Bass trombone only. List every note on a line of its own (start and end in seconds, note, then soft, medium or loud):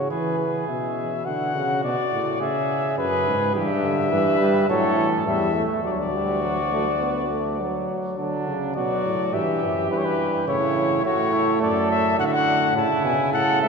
0.00 0.12 C#3 medium
0.10 0.68 E3 medium
0.68 1.28 B2 medium
1.26 1.54 D3 medium
1.55 1.83 C#3 medium
1.84 1.97 B2 medium
2.12 2.40 A2 medium
2.41 2.97 C#3 medium
2.98 3.28 F#2 medium
3.27 3.54 G#2 medium
3.55 4.11 G2 loud
4.12 4.68 G2 loud
4.70 5.26 A2 medium
5.27 5.63 E2 medium
5.85 7.85 D2 medium
8.19 8.45 D3 medium
8.47 8.76 C#3 medium
8.77 9.04 B2 medium
9.05 9.35 A2 medium
9.34 9.64 G2 medium
9.63 9.90 F#2 medium
9.91 10.47 G2 medium
10.48 11.04 A2 medium
11.05 11.61 A2 medium
11.61 12.17 F#2 medium
12.18 12.74 A2 medium
12.75 12.88 A2 medium
13.04 13.17 B2 medium
13.33 13.61 A2 medium
13.61 13.68 G#2 medium